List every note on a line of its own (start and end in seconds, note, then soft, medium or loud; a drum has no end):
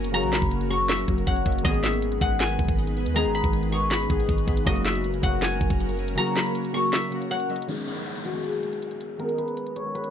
0.00 0.25 F#1 loud
0.00 0.11 C#3 loud
0.00 0.13 F#3 loud
0.00 1.62 F#3 medium
0.00 0.14 A#3 loud
0.00 1.62 A#3 medium
0.00 1.62 C#4 medium
0.00 0.15 F#4 loud
0.00 1.62 A#4 medium
0.00 0.54 E5 medium
0.00 0.80 F#5 medium
0.00 0.88 G#5 medium
0.04 closed hi-hat medium
0.11 0.50 C#3 loud
0.11 0.51 F#3 loud
0.11 0.52 A#3 loud
0.11 0.52 F#4 loud
0.11 0.39 A#5 loud
0.11 closed hi-hat medium
0.23 0.41 A#1 loud
0.23 closed hi-hat medium
0.33 1.68 B5 medium
0.33 snare loud
0.33 clap medium
0.33 closed hi-hat medium
0.42 1.05 F#1 loud
0.42 kick medium
0.42 closed hi-hat medium
0.51 closed hi-hat loud
0.61 closed hi-hat medium
0.69 0.95 C#3 medium
0.69 0.95 F#3 medium
0.69 0.96 A#3 medium
0.69 0.97 F#4 loud
0.69 1.97 C#6 medium
0.69 open hi-hat medium
0.89 1.71 E5 medium
0.89 snare loud
0.89 clap medium
0.89 closed hi-hat medium
0.98 closed hi-hat medium
1.06 1.26 F#1 loud
1.06 1.32 C#3 medium
1.06 1.33 F#3 medium
1.06 1.34 A#3 medium
1.06 1.34 F#4 loud
1.06 kick medium
1.06 closed hi-hat medium
1.18 closed hi-hat medium
1.27 1.45 F#1 loud
1.27 1.44 C#5 medium
1.27 2.21 F#5 medium
1.27 kick loud
1.27 closed hi-hat medium
1.36 closed hi-hat medium
1.45 1.64 F#1 loud
1.45 1.58 C#3 medium
1.45 1.58 F#3 medium
1.45 1.59 A#3 medium
1.45 1.60 F#4 medium
1.45 1.64 D#5 medium
1.45 kick loud
1.45 closed hi-hat medium
1.52 closed hi-hat medium
1.58 closed hi-hat medium
1.63 2.19 G#1 loud
1.63 2.02 D#3 loud
1.63 2.02 G#3 loud
1.63 4.64 G#3 medium
1.63 4.64 B3 medium
1.63 2.03 B3 loud
1.63 4.64 D#4 medium
1.63 2.04 G#4 loud
1.63 4.64 B4 medium
1.63 1.89 D#5 loud
1.63 kick loud
1.63 closed hi-hat medium
1.74 closed hi-hat medium
1.83 3.56 E5 medium
1.83 snare loud
1.83 clap medium
1.83 closed hi-hat medium
1.93 closed hi-hat medium
2.02 closed hi-hat medium
2.12 closed hi-hat medium
2.20 2.58 G#1 loud
2.20 2.71 D#3 loud
2.20 2.72 G#3 medium
2.20 2.72 B3 medium
2.20 2.73 G#4 loud
2.20 3.82 F#5 medium
2.20 kick loud
2.20 closed hi-hat medium
2.40 3.90 G#5 medium
2.40 snare loud
2.40 clap medium
2.40 closed hi-hat medium
2.49 closed hi-hat medium
2.59 2.68 G#1 loud
2.59 kick loud
2.59 closed hi-hat medium
2.69 3.08 G#1 loud
2.69 kick medium
2.69 closed hi-hat medium
2.79 closed hi-hat medium
2.87 closed hi-hat medium
2.97 closed hi-hat medium
3.06 3.27 D#2 loud
3.06 closed hi-hat medium
3.14 3.53 D#3 loud
3.14 3.53 G#3 loud
3.14 3.54 B3 loud
3.14 3.55 G#4 loud
3.14 3.41 A#5 loud
3.14 closed hi-hat medium
3.25 3.43 G#1 loud
3.25 closed hi-hat medium
3.35 3.91 B5 medium
3.35 closed hi-hat medium
3.44 4.07 G#1 loud
3.44 kick medium
3.44 closed hi-hat medium
3.53 closed hi-hat medium
3.63 closed hi-hat medium
3.70 3.97 D#3 medium
3.70 3.97 G#3 medium
3.70 3.98 B3 medium
3.70 3.98 G#4 loud
3.70 4.98 C#6 medium
3.70 closed hi-hat medium
3.91 5.26 B5 medium
3.91 snare loud
3.91 clap medium
3.91 closed hi-hat medium
4.00 closed hi-hat medium
4.08 4.28 G#1 loud
4.08 4.34 D#3 loud
4.08 4.35 G#3 medium
4.08 4.35 B3 medium
4.08 4.36 G#4 loud
4.08 kick medium
4.08 closed hi-hat medium
4.20 closed hi-hat medium
4.29 4.47 G#1 loud
4.29 kick medium
4.29 closed hi-hat medium
4.38 closed hi-hat medium
4.45 4.66 G#1 loud
4.45 4.59 D#3 medium
4.45 4.60 G#3 medium
4.45 4.61 B3 medium
4.45 4.61 G#4 medium
4.45 kick loud
4.45 closed hi-hat medium
4.57 closed hi-hat medium
4.64 5.21 F#1 loud
4.64 5.03 C#3 loud
4.64 5.04 F#3 loud
4.64 7.65 F#3 medium
4.64 7.65 A#3 medium
4.64 5.05 A#3 loud
4.64 7.65 C#4 medium
4.64 5.05 F#4 loud
4.64 7.65 A#4 medium
4.64 4.91 D#5 loud
4.64 kick loud
4.64 closed hi-hat medium
4.76 closed hi-hat medium
4.85 6.58 E5 medium
4.85 snare loud
4.85 clap medium
4.85 closed hi-hat medium
4.95 closed hi-hat medium
5.04 closed hi-hat medium
5.14 closed hi-hat medium
5.21 5.59 F#1 loud
5.21 5.73 C#3 loud
5.21 5.73 F#3 medium
5.21 5.74 A#3 medium
5.21 5.75 F#4 loud
5.21 6.84 F#5 medium
5.21 kick loud
5.21 closed hi-hat medium
5.42 6.92 G#5 medium
5.42 snare loud
5.42 clap medium
5.42 closed hi-hat medium
5.51 closed hi-hat medium
5.61 5.70 F#1 loud
5.61 kick medium
5.61 closed hi-hat medium
5.70 6.18 F#1 loud
5.70 kick loud
5.70 closed hi-hat medium
5.80 closed hi-hat medium
5.89 closed hi-hat medium
5.99 closed hi-hat medium
6.08 closed hi-hat medium
6.15 6.54 C#3 loud
6.15 6.55 F#3 loud
6.15 6.55 A#3 loud
6.15 6.56 F#4 loud
6.15 6.43 A#5 loud
6.15 closed hi-hat medium
6.27 closed hi-hat medium
6.36 7.72 B5 medium
6.36 snare loud
6.36 clap medium
6.36 closed hi-hat medium
6.46 closed hi-hat medium
6.55 closed hi-hat medium
6.65 closed hi-hat medium
6.72 6.99 C#3 medium
6.72 6.99 F#3 medium
6.72 7.00 A#3 medium
6.72 7.00 F#4 loud
6.72 8.00 C#6 medium
6.72 open hi-hat medium
6.93 7.75 E5 medium
6.93 snare loud
6.93 clap medium
6.93 closed hi-hat medium
7.02 closed hi-hat medium
7.10 7.36 C#3 medium
7.10 7.37 F#3 medium
7.10 7.37 A#3 medium
7.10 7.38 F#4 loud
7.10 closed hi-hat medium
7.22 closed hi-hat medium
7.30 7.48 C#5 medium
7.30 8.92 F#5 medium
7.30 closed hi-hat medium
7.40 closed hi-hat medium
7.48 7.62 C#3 medium
7.48 7.62 F#3 medium
7.48 7.63 A#3 medium
7.48 7.63 F#4 medium
7.48 7.67 D#5 medium
7.48 closed hi-hat medium
7.56 closed hi-hat medium
7.62 closed hi-hat medium
7.67 8.12 D#3 medium
7.67 8.12 G#3 medium
7.67 8.13 B3 medium
7.67 7.94 D#4 loud
7.67 8.14 G#4 loud
7.67 closed hi-hat medium
7.67 downlifter medium
7.78 closed hi-hat medium
7.87 10.10 E4 medium
7.87 closed hi-hat medium
7.97 closed hi-hat soft
8.06 closed hi-hat medium
8.16 closed hi-hat medium
8.25 10.10 F#4 medium
8.25 closed hi-hat medium
8.32 8.52 D#3 medium
8.32 8.53 G#3 medium
8.32 8.53 B3 medium
8.32 8.54 G#4 medium
8.44 10.10 G#4 medium
8.44 closed hi-hat medium
8.53 closed hi-hat medium
8.61 9.00 D#3 medium
8.61 9.00 G#3 medium
8.61 9.01 B3 medium
8.61 9.02 G#4 medium
8.61 closed hi-hat medium
8.73 closed hi-hat medium
8.82 closed hi-hat medium
8.91 closed hi-hat medium
9.01 closed hi-hat medium
9.18 9.63 D#3 loud
9.18 9.64 G#3 medium
9.18 9.64 B3 medium
9.18 9.65 G#4 loud
9.18 9.44 A#4 loud
9.18 closed hi-hat medium
9.29 closed hi-hat medium
9.38 9.94 B4 medium
9.38 closed hi-hat medium
9.48 closed hi-hat soft
9.57 closed hi-hat medium
9.67 closed hi-hat medium
9.76 10.10 C#5 medium
9.76 closed hi-hat medium
9.83 10.03 D#3 medium
9.83 10.04 G#3 medium
9.83 10.05 B3 medium
9.83 10.05 A#4 medium
9.95 10.10 B4 medium
9.95 closed hi-hat medium
10.04 closed hi-hat medium